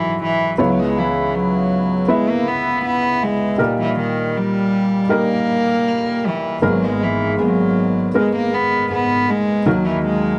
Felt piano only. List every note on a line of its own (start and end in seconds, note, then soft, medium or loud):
0.00 0.55 G#1 medium
0.00 0.55 G#2 medium
0.00 0.51 F#3 medium
0.00 0.51 E4 medium
0.00 0.52 F#4 medium
0.58 3.55 C#2 medium
0.58 3.55 C#3 medium
0.58 2.01 B3 medium
0.58 2.01 E4 medium
0.58 2.01 C#5 medium
2.08 3.51 B3 medium
2.08 3.51 E4 medium
2.08 3.52 E5 medium
3.58 6.58 A#2 medium
3.58 5.02 G3 medium
3.58 5.02 D#4 soft
3.58 5.02 A#4 medium
5.09 6.55 G3 medium
5.09 6.55 D#4 medium
5.09 6.55 A#4 medium
6.62 9.62 G#1 medium
6.62 9.62 G#2 soft
6.62 8.07 G#3 medium
6.62 8.07 B3 soft
6.62 8.07 A#4 medium
8.14 9.58 G#3 medium
8.14 9.59 B3 medium
8.14 9.59 A#4 medium
9.66 10.39 D#2 medium
9.66 10.39 D#3 medium
9.66 10.39 F#3 medium
9.66 10.39 D#4 medium
9.66 10.39 A#4 medium